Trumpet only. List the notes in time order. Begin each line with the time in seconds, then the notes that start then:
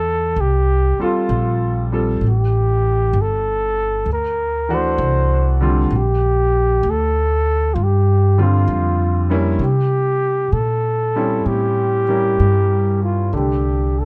Already playing: A4
0.41 G4
1.03 F4
2.28 G4
3.22 A4
4.13 A#4
4.74 C5
5.94 G4
6.90 A4
7.74 F4
7.83 G4
8.43 F4
9.63 G4
10.53 A4
11.47 G4
13.04 F4
13.37 G4
14.00 A4